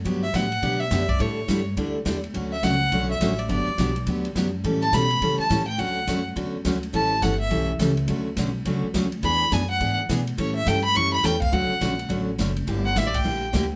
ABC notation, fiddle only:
X:1
M:4/4
L:1/8
Q:"Swing" 1/4=209
K:D
V:1 name="Fiddle"
z e f3 e2 d | c3 z4 z | z e f3 e2 d | d3 z4 z |
z a b3 a2 g | f3 z4 z | a2 f e2 z3 | z8 |
b2 ^g f2 z3 | c e g b c' b g =f | f4 z4 | z f (3e d g- g2 z2 |]